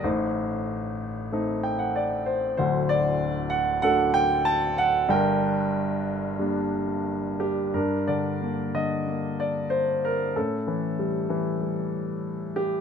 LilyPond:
<<
  \new Staff \with { instrumentName = "Grand piano" } { \time 4/4 \key g \minor \tempo 4 = 94 << { c''2 r8 g''16 fis''16 d''8 c''8 | c''8 d''4 fis''8 fis''8 g''8 a''8 fis''8 | g''2. r8 g'8 | bes'8 d''4 ees''4 d''8 c''8 bes'8 |
a'4 r2 r8 g'8 | } \\ { ees'2 r2 | fis'2 a'2 | bes'2. r4 | d'2 r2 |
cis'2 r2 | } >> }
  \new Staff \with { instrumentName = "Grand piano" } { \clef bass \time 4/4 \key g \minor <a,, a,>2 <a c' ees'>2 | <d,, d,>2 <fis a d'>2 | <g,, g,>2 <g bes d'>2 | g,8 d8 bes8 d8 bes2 |
a,8 e8 g8 e8 g2 | }
>>